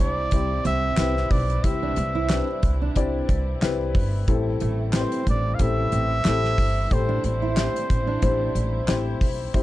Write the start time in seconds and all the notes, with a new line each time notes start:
Already playing: C3 G3 C4 E4 G4 C5
0.00 C2 D4 D5
0.31 C2 C4 E4 G4 C5, kick, closed hi-hat
0.65 C2 C4 E5, closed hi-hat
0.97 C2 C4 E4 G4 B4, snare, clap, closed hi-hat
1.17 snare
1.31 B1 D5, kick, open hi-hat
1.50 closed hi-hat
1.64 C2 C3 C4 E4 G4 C5 E5, kick, closed hi-hat
1.83 D4
1.96 C2, closed hi-hat
2.15 E4
2.29 C4 D4 E4 G4 B4, snare, clap, closed hi-hat
2.63 C2, kick, closed hi-hat
2.82 D4
2.96 C2 C4 E4 G4 D5, kick, closed hi-hat
3.29 C2, kick, closed hi-hat
3.62 C2 C4 E4 G4 B4, snare, clap, closed hi-hat
3.95 G1, kick, open hi-hat
4.27 A1 A2 E3 A3 C4 E4 G4 A4, kick, closed hi-hat
4.60 A1 A3, closed hi-hat
4.93 C4 E4 G4 B4 C5, snare, clap, closed hi-hat
5.01 C5
5.12 closed hi-hat
5.26 A1 D4 D5, kick, closed hi-hat
5.55 F5
5.59 A1 C4 E4 G4 A4 E5, kick, closed hi-hat
5.92 A1 C4, closed hi-hat
6.25 A1 C4 E4 G4 A4, snare, clap, closed hi-hat
6.44 snare
6.58 G1, kick, open hi-hat
6.90 A1 A2 A3 C4 E4 G4 A4 C5, kick, closed hi-hat
7.09 D4
7.24 A1 C5, closed hi-hat
7.42 E4
7.56 C4 D4 E4 G4 C5, snare, clap, closed hi-hat
7.76 closed hi-hat
7.90 A1, kick, closed hi-hat
8.07 D4
8.22 A1 C4 E4 G4 C5, kick, closed hi-hat
8.55 A1, closed hi-hat
8.87 A1 C4 E4 G4 C5, snare, clap, closed hi-hat
9.21 B1, kick, open hi-hat
9.54 C2 C3 G3 C4 E4 G4 C5, kick, closed hi-hat